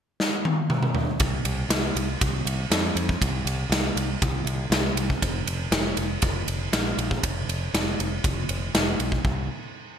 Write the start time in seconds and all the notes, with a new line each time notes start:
0.20 snare
0.45 high tom
0.70 mid tom
0.83 mid tom
0.95 floor tom
1.20 C2, kick, ride
1.45 C2, ride
1.69 C2, snare, ride
1.95 C2, ride
2.21 C2, kick, ride
2.45 C2, ride
2.70 F2, snare, ride
2.95 F2, ride
3.09 kick
3.21 C2, kick, ride
3.45 C2, ride
3.69 C2, snare, ride
3.95 C2, ride
4.22 C2, kick, ride
4.44 C2, ride
4.70 C2, snare, ride
4.94 C2, ride
5.10 kick
5.22 F1, kick, ride
5.46 F1, ride
5.71 F1, snare, ride
5.97 F1, ride
6.22 F1, kick, ride
6.48 F1, ride
6.72 A#1, snare, ride
6.97 A#1, ride
7.11 kick
7.23 F1, kick, ride
7.48 F1, ride
7.74 F1, snare, ride
7.99 F1, ride
8.24 F1, kick, ride
8.49 F1, ride
8.74 F1, snare, ride
8.99 B1, ride
9.12 kick
9.25 C2, kick